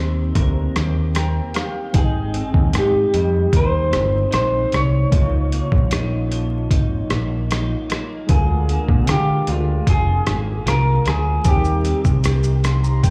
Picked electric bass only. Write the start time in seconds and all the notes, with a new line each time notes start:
Already playing: D#2
0.35 D2
0.76 D#2
1.94 G#1
2.54 D#2
2.73 G#2
3.14 F2
3.53 D#2
3.93 G1
4.33 A#1
4.73 C2
5.12 C#2
5.72 A#1
6.71 G#1
7.11 A#1
8.30 D2
8.88 A#2
9.09 D3
9.48 D2
9.87 F1
10.27 G#1
10.66 C2
11.06 D2
11.45 D#2
12.05 C2
13.03 A#1